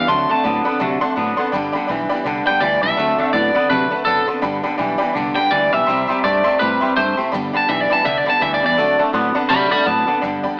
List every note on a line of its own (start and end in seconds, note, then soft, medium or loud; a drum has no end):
0.07 0.28 D2 medium
0.07 0.30 D3 medium
0.07 0.28 D3 medium
0.07 0.30 F#3 medium
0.07 0.28 A3 loud
0.07 0.31 C4 medium
0.07 0.30 D4 medium
0.07 0.28 A4 medium
0.07 0.21 D5 medium
0.07 0.21 F#5 medium
0.07 0.21 A5 loud
0.07 0.31 C6 medium
0.29 0.43 D3 medium
0.29 0.44 A3 medium
0.29 0.44 C4 medium
0.29 0.45 D4 medium
0.29 0.45 A4 medium
0.29 0.38 D5 medium
0.29 0.38 F#5 medium
0.29 0.39 A5 medium
0.29 1.36 A5 medium
0.29 muted fretless electric bass stroke medium
0.44 0.64 A2 loud
0.44 0.64 D3 loud
0.44 0.66 F#3 medium
0.44 0.65 B3 medium
0.44 0.67 C4 medium
0.44 0.66 D4 medium
0.44 0.65 A4 medium
0.44 0.57 D5 medium
0.44 0.57 F#5 medium
0.44 0.57 B5 medium
0.65 0.80 D3 medium
0.65 0.80 B3 medium
0.65 0.80 C4 soft
0.65 0.80 D4 soft
0.65 0.80 A4 medium
0.65 0.74 D5 medium
0.65 0.74 F#5 loud
0.65 0.75 B5 loud
0.65 muted fretless electric bass stroke medium
0.80 1.00 C3 medium
0.80 1.02 D3 medium
0.80 1.00 D3 loud
0.80 1.02 F#3 medium
0.80 1.01 A3 loud
0.80 1.02 C4 medium
0.80 1.02 D4 loud
0.80 1.00 A4 medium
0.80 0.93 D5 medium
0.80 0.93 F#5 medium
0.80 0.93 A5 medium
1.01 1.16 D3 medium
1.01 1.16 A3 medium
1.01 1.16 C4 medium
1.01 1.17 D4 medium
1.01 1.17 A4 medium
1.01 1.11 D5 loud
1.01 1.10 F#5 loud
1.01 1.11 C6 loud
1.01 muted fretless electric bass stroke medium
1.16 1.36 A2 medium
1.16 1.36 D3 medium
1.16 1.38 F#3 medium
1.16 1.37 B3 loud
1.16 1.39 C4 medium
1.16 1.39 D4 medium
1.16 1.37 A4 medium
1.16 1.29 D5 medium
1.16 1.29 F#5 medium
1.16 1.30 A5 loud
1.36 1.52 D3 medium
1.36 1.52 B3 medium
1.36 1.53 D4 medium
1.36 1.53 A4 medium
1.36 1.46 D5 medium
1.36 1.47 F#5 medium
1.36 1.47 C6 loud
1.36 muted fretless electric bass stroke medium
1.41 1.54 C4 medium
1.52 1.72 G1 medium
1.52 1.75 G2 loud
1.52 1.73 G2 medium
1.52 1.75 D3 loud
1.52 1.73 D3 loud
1.52 1.75 G3 loud
1.52 1.75 B3 loud
1.52 1.74 D4 medium
1.52 1.74 G4 loud
1.52 1.66 D5 medium
1.52 1.66 G5 loud
1.52 1.66 B5 loud
1.72 1.88 G2 medium
1.72 1.89 D3 medium
1.72 1.90 D4 medium
1.72 1.89 G4 medium
1.72 1.82 D5 loud
1.72 1.83 G5 medium
1.72 1.83 B5 loud
1.72 muted fretless electric bass stroke medium
1.77 1.88 G3 medium
1.77 1.89 B3 medium
1.87 2.09 B1 loud
1.87 2.09 G2 medium
1.87 2.09 E3 loud
1.87 2.11 G3 medium
1.87 2.11 B3 medium
1.87 2.01 D5 medium
1.87 2.02 G5 medium
1.87 2.02 B5 loud
1.91 2.11 D4 medium
1.91 2.10 G4 medium
2.09 2.24 G2 medium
2.09 2.25 E3 medium
2.09 2.26 B3 medium
2.09 2.26 D4 medium
2.09 2.26 G4 medium
2.09 2.19 D5 loud
2.09 2.19 G5 loud
2.09 2.19 B5 loud
2.09 muted fretless electric bass stroke medium
2.14 2.25 G3 medium
2.24 2.44 C2 medium
2.24 2.47 G2 medium
2.24 2.45 G2 medium
2.24 2.47 D3 medium
2.24 2.45 D3 loud
2.24 2.47 G3 medium
2.24 2.48 B3 loud
2.24 2.47 D4 loud
2.24 2.46 G4 loud
2.24 2.38 D5 medium
2.24 2.38 G5 medium
2.24 2.38 B5 medium
2.46 2.60 G2 medium
2.46 2.61 D3 loud
2.46 2.61 G3 soft
2.46 2.63 B3 medium
2.46 2.63 D4 medium
2.46 2.62 G4 medium
2.46 2.55 D5 medium
2.46 2.56 G5 medium
2.46 2.61 G5 loud
2.46 2.56 B5 loud
2.46 muted fretless electric bass stroke medium
2.61 2.80 D2 loud
2.61 2.81 G2 loud
2.61 2.81 E3 medium
2.61 2.84 G3 medium
2.61 2.84 B3 medium
2.61 2.84 D4 medium
2.61 2.82 D5 loud
2.61 2.74 D5 medium
2.61 2.74 G5 medium
2.61 2.75 B5 medium
2.65 2.83 G4 medium
2.82 2.96 B1 loud
2.82 2.96 G2 medium
2.82 2.97 E3 medium
2.82 2.99 B3 soft
2.82 2.99 D4 medium
2.82 2.98 G4 medium
2.82 2.91 D5 medium
2.82 3.32 E5 medium
2.82 2.92 G5 medium
2.82 2.92 B5 medium
2.86 2.99 G3 soft
2.97 3.17 D2 medium
2.97 3.20 D3 medium
2.97 3.18 D3 medium
2.97 3.20 F#3 medium
2.97 3.18 A3 loud
2.97 3.20 C4 medium
2.97 3.20 D4 medium
2.97 3.18 A4 medium
2.97 3.10 D5 medium
2.97 3.10 F#5 medium
2.97 3.10 A5 loud
3.18 3.33 D3 medium
3.18 3.33 A3 medium
3.18 3.34 C4 medium
3.18 3.35 D4 medium
3.18 3.34 A4 medium
3.18 3.28 D5 medium
3.18 3.28 F#5 medium
3.18 3.28 A5 medium
3.18 muted fretless electric bass stroke medium
3.33 3.53 A2 loud
3.33 3.54 D3 medium
3.33 3.55 F#3 medium
3.33 3.54 B3 loud
3.33 3.56 C4 medium
3.33 3.56 D4 medium
3.33 3.55 A4 medium
3.33 3.46 D5 medium
3.33 3.69 D5 medium
3.33 3.46 F#5 medium
3.33 3.47 A5 medium
3.55 3.69 D3 medium
3.55 3.69 B3 medium
3.55 3.71 D4 medium
3.55 3.71 A4 medium
3.55 3.64 D5 loud
3.55 3.64 F#5 loud
3.55 3.64 B5 loud
3.55 muted fretless electric bass stroke medium
3.59 3.70 C4 soft
3.69 3.89 C3 medium
3.69 3.90 D3 loud
3.69 3.92 D3 medium
3.69 3.92 F#3 medium
3.69 3.90 A3 loud
3.69 3.92 C4 medium
3.69 3.92 D4 medium
3.69 3.91 A4 medium
3.69 4.04 B4 medium
3.69 3.83 D5 medium
3.69 3.83 F#5 medium
3.69 3.83 A5 medium
3.91 4.05 D3 medium
3.91 4.05 A3 medium
3.91 4.06 C4 soft
3.91 4.07 D4 medium
3.91 4.07 A4 soft
3.91 4.00 D5 medium
3.91 4.00 F#5 medium
3.91 4.00 A5 loud
3.91 muted fretless electric bass stroke medium
4.05 4.26 F#1 medium
4.05 4.26 D3 medium
4.05 4.28 F#3 medium
4.05 4.26 B3 medium
4.05 4.28 C4 medium
4.05 4.29 D4 medium
4.05 4.26 A4 loud
4.05 4.27 A4 medium
4.05 4.19 D5 medium
4.05 4.19 F#5 medium
4.05 4.19 A5 medium
4.27 4.41 D3 medium
4.27 4.42 B3 medium
4.27 4.43 C4 soft
4.27 4.43 D4 medium
4.27 4.43 A4 medium
4.27 4.36 D5 medium
4.27 4.37 F#5 medium
4.27 4.37 C6 medium
4.27 muted fretless electric bass stroke medium
4.42 4.62 G1 medium
4.42 4.62 G2 medium
4.42 4.64 G2 medium
4.42 4.62 D3 loud
4.42 4.64 D3 medium
4.42 4.64 G3 loud
4.42 4.64 B3 medium
4.42 4.64 D4 medium
4.42 4.63 G4 loud
4.42 4.55 D5 loud
4.42 4.55 G5 medium
4.42 4.55 B5 loud
4.63 4.77 G2 medium
4.63 4.77 D3 loud
4.63 4.78 G3 medium
4.63 4.79 B3 medium
4.63 4.80 D4 medium
4.63 4.79 G4 medium
4.63 4.73 D5 loud
4.63 4.73 G5 medium
4.63 4.73 B5 loud
4.63 muted fretless electric bass stroke medium
4.78 4.98 B1 loud
4.78 4.98 G2 medium
4.78 4.98 E3 loud
4.78 5.00 G3 medium
4.78 5.01 B3 medium
4.78 5.01 D4 medium
4.78 4.91 D5 medium
4.78 4.91 G5 medium
4.78 4.91 B5 loud
4.82 5.00 G4 medium
4.98 5.13 G2 medium
4.98 5.14 E3 medium
4.98 5.16 D4 medium
4.98 5.15 G4 medium
4.98 5.08 D5 loud
4.98 5.08 G5 loud
4.98 5.08 B5 loud
4.98 muted fretless electric bass stroke medium
5.03 5.16 G3 medium
5.03 5.16 B3 medium
5.13 5.34 C2 medium
5.13 5.34 G2 medium
5.13 5.37 G2 medium
5.13 5.35 D3 loud
5.13 5.37 D3 medium
5.13 5.27 D5 medium
5.13 5.27 G5 medium
5.13 5.27 D6 medium
5.17 5.37 G3 medium
5.17 5.38 B3 loud
5.17 5.37 D4 medium
5.17 5.36 G4 medium
5.35 5.50 G2 medium
5.35 5.50 D3 medium
5.35 5.52 D4 medium
5.35 5.52 G4 medium
5.35 5.45 D5 loud
5.35 5.45 G5 medium
5.35 5.50 G5 loud
5.35 5.45 B5 loud
5.35 muted fretless electric bass stroke medium
5.39 5.50 G3 soft
5.39 5.51 B3 soft
5.51 5.71 D2 medium
5.51 5.71 G2 medium
5.51 5.71 E3 medium
5.51 5.73 G3 medium
5.51 5.73 B3 medium
5.51 5.73 D4 medium
5.51 5.72 G4 medium
5.51 5.73 D5 loud
5.51 5.64 D5 medium
5.51 5.64 G5 medium
5.51 5.64 B5 medium
5.72 5.86 B1 medium
5.72 5.86 G2 medium
5.72 5.86 E3 medium
5.72 5.89 B3 medium
5.72 5.88 D4 soft
5.72 5.88 G4 medium
5.72 5.81 D5 medium
5.72 6.22 E5 loud
5.72 5.82 G5 medium
5.72 5.82 B5 medium
5.76 5.88 G3 soft
5.86 6.07 C2 medium
5.86 6.07 C3 medium
5.86 6.09 C3 medium
5.86 6.07 G3 medium
5.86 6.10 G3 medium
5.86 6.10 C4 loud
5.86 6.10 E4 loud
5.86 6.09 G4 medium
5.86 6.00 E5 medium
5.86 6.00 G5 medium
5.86 6.00 C6 medium
6.07 6.23 C3 loud
6.07 6.23 G3 medium
6.07 6.24 G4 medium
6.07 6.17 E5 medium
6.07 6.17 G5 medium
6.07 6.18 C6 medium
6.07 muted fretless electric bass stroke medium
6.12 6.25 C4 medium
6.12 6.25 E4 medium
6.24 6.43 G2 medium
6.24 6.43 C3 medium
6.24 6.46 G3 medium
6.24 6.44 A3 loud
6.24 6.46 C4 medium
6.24 6.46 E4 medium
6.24 6.59 D5 medium
6.24 6.37 E5 medium
6.24 6.37 G5 medium
6.24 6.37 C6 medium
6.28 6.44 G4 medium
6.44 6.59 C3 medium
6.44 6.59 A3 medium
6.44 6.61 E4 soft
6.44 6.53 E5 loud
6.44 6.53 G5 medium
6.44 6.54 C6 loud
6.44 muted fretless electric bass stroke medium
6.48 6.61 C4 soft
6.58 6.80 A2 medium
6.58 6.80 C3 medium
6.58 6.82 C3 medium
6.58 6.80 G3 loud
6.58 6.82 G3 medium
6.58 6.82 C4 medium
6.58 6.95 B4 medium
6.58 6.72 E5 medium
6.58 6.72 G5 medium
6.58 6.72 A5 medium
6.62 6.83 E4 medium
6.62 6.81 G4 medium
6.80 6.95 C3 medium
6.80 6.96 G3 medium
6.80 6.97 E4 soft
6.80 6.97 G4 medium
6.80 6.90 E5 loud
6.80 6.90 G5 medium
6.80 6.90 C6 loud
6.80 muted fretless electric bass stroke medium
6.85 6.97 C4 soft
6.96 7.16 G2 loud
6.96 7.16 C3 medium
6.96 7.18 G3 medium
6.96 7.16 A3 loud
6.96 7.19 E4 medium
6.96 7.17 C5 loud
6.96 7.09 E5 medium
6.96 7.09 G5 medium
6.96 7.09 D6 loud
7.00 7.17 G4 medium
7.17 7.31 C3 medium
7.17 7.31 A3 medium
7.17 7.34 E4 medium
7.17 7.33 G4 medium
7.17 7.26 E5 medium
7.17 7.26 G5 medium
7.17 7.27 C6 medium
7.17 muted fretless electric bass stroke medium
7.21 7.34 C4 soft
7.32 7.52 G1 medium
7.32 7.52 G2 medium
7.32 7.55 G2 loud
7.32 7.52 D3 medium
7.32 7.55 D3 loud
7.32 7.55 G3 loud
7.32 7.55 B3 loud
7.32 7.54 D4 loud
7.32 7.53 G4 loud
7.32 7.45 D5 loud
7.32 7.45 G5 loud
7.32 7.45 B5 loud
7.53 7.67 G2 medium
7.53 7.68 D3 medium
7.53 7.68 G3 medium
7.53 7.70 B3 soft
7.53 7.70 D4 medium
7.53 7.69 G4 medium
7.53 7.63 D5 medium
7.53 7.63 G5 medium
7.53 7.69 A5 loud
7.53 7.63 B5 loud
7.53 muted fretless electric bass stroke medium
7.69 7.88 B1 loud
7.69 7.88 G2 medium
7.69 7.88 E3 loud
7.69 7.91 G3 medium
7.69 7.92 B3 medium
7.69 7.91 D4 medium
7.69 7.90 G4 medium
7.69 7.82 D5 medium
7.69 7.81 E5 medium
7.69 7.82 G5 medium
7.69 7.82 B5 medium
7.81 7.93 D5 medium
7.90 8.03 G2 medium
7.90 8.04 E3 medium
7.90 8.05 G3 soft
7.90 8.05 B3 medium
7.90 8.05 D4 soft
7.90 8.05 G4 soft
7.90 7.99 D5 medium
7.90 7.99 G5 medium
7.90 8.05 A5 loud
7.90 7.99 B5 loud
7.90 muted fretless electric bass stroke medium
8.04 8.25 C2 medium
8.04 8.24 G2 medium
8.04 8.27 G2 medium
8.04 8.25 D3 loud
8.04 8.27 D3 medium
8.04 8.27 G3 medium
8.04 8.27 B3 medium
8.04 8.27 D4 medium
8.04 8.26 G4 medium
8.04 8.17 D5 medium
8.04 8.18 E5 loud
8.04 8.18 G5 medium
8.04 8.18 A5 medium
8.18 8.29 D5 loud
8.26 8.39 G2 medium
8.26 8.40 D3 loud
8.26 8.41 B3 soft
8.26 8.42 D4 medium
8.26 8.42 G4 medium
8.26 8.35 D5 loud
8.26 8.35 G5 medium
8.26 8.41 A5 medium
8.26 8.36 B5 loud
8.26 muted fretless electric bass stroke medium
8.30 8.40 G3 soft
8.41 8.61 D2 loud
8.41 8.61 G2 medium
8.41 8.61 E3 medium
8.41 8.63 G3 medium
8.41 8.63 B3 medium
8.41 8.62 D4 medium
8.41 8.62 G4 medium
8.41 8.54 D5 medium
8.41 8.54 E5 loud
8.41 8.54 G5 medium
8.41 8.54 B5 medium
8.54 8.65 D5 loud
8.62 8.76 E2 loud
8.62 8.76 G2 medium
8.62 8.76 E3 medium
8.62 8.78 G3 soft
8.62 8.79 B3 soft
8.62 8.78 D4 medium
8.62 8.78 G4 medium
8.62 8.72 D5 medium
8.62 9.01 D5 loud
8.62 8.72 G5 medium
8.62 8.73 A5 medium
8.77 8.97 D2 medium
8.77 8.97 D3 medium
8.77 9.00 D3 medium
8.77 9.00 F#3 medium
8.77 8.98 A3 medium
8.77 9.00 C4 medium
8.77 8.99 D4 medium
8.77 8.98 A4 loud
8.77 8.91 D5 medium
8.77 8.91 F#5 medium
8.77 8.91 A5 loud
8.99 9.12 D3 medium
8.99 9.13 A3 medium
8.99 9.13 C4 medium
8.99 9.14 D4 medium
8.99 9.14 A4 medium
8.99 9.08 D5 medium
8.99 9.08 F#5 medium
8.99 9.08 A5 medium
8.99 muted fretless electric bass stroke medium
9.13 9.33 A2 loud
9.13 9.33 D3 loud
9.13 9.35 F#3 medium
9.13 9.34 B3 loud
9.13 9.36 C4 medium
9.13 9.36 D4 medium
9.13 9.34 A4 medium
9.13 9.27 D5 medium
9.13 9.27 F#5 medium
9.13 9.27 C6 loud
9.35 9.49 D3 medium
9.35 9.49 B3 medium
9.35 9.51 C4 soft
9.35 9.51 D4 medium
9.35 9.51 A4 medium
9.35 9.44 D5 loud
9.35 9.44 F#5 loud
9.35 9.45 A5 loud
9.35 muted fretless electric bass stroke medium
9.49 9.70 C3 medium
9.49 9.70 D3 medium
9.49 9.72 D3 medium
9.49 9.72 F#3 medium
9.49 9.70 A3 loud
9.49 9.73 C4 medium
9.49 9.72 D4 medium
9.49 9.70 A4 medium
9.49 9.70 D5 medium
9.49 9.63 D5 medium
9.49 9.63 F#5 medium
9.49 9.64 A5 medium
9.49 9.71 B5 loud
9.71 9.85 D3 medium
9.71 9.86 A3 medium
9.71 9.86 C4 soft
9.71 9.88 D4 medium
9.71 9.87 A4 medium
9.71 9.86 D5 loud
9.71 9.81 D5 loud
9.71 9.81 F#5 medium
9.71 9.81 A5 loud
9.71 9.86 B5 loud
9.71 muted fretless electric bass stroke medium
9.85 10.06 A2 loud
9.85 10.06 D3 medium
9.85 10.08 F#3 medium
9.85 10.06 B3 medium
9.85 10.09 C4 medium
9.85 10.09 D4 medium
9.85 9.99 D5 medium
9.85 9.99 F#5 medium
9.85 10.00 A5 medium
9.85 10.22 A5 loud
9.90 10.07 A4 medium
10.07 10.21 D3 medium
10.07 10.22 B3 medium
10.07 10.24 D4 medium
10.07 10.23 A4 medium
10.07 10.17 D5 medium
10.07 10.17 F#5 medium
10.07 10.17 A5 medium
10.07 muted fretless electric bass stroke medium
10.11 10.24 C4 soft
10.22 10.36 G1 medium
10.22 10.56 G2 medium
10.22 10.45 G2 medium
10.22 10.56 D3 loud
10.22 10.45 D3 medium
10.22 10.46 G3 loud
10.22 10.46 B3 medium
10.22 10.44 D4 medium
10.22 10.44 G4 medium
10.22 10.36 D5 medium
10.22 10.36 G5 medium
10.22 10.36 B5 medium
10.43 10.60 B3 medium
10.43 10.60 D4 medium
10.43 10.60 G4 medium
10.43 10.53 D5 loud
10.43 10.53 G5 medium
10.43 10.53 B5 loud
10.43 muted fretless electric bass stroke medium
10.47 10.59 G3 medium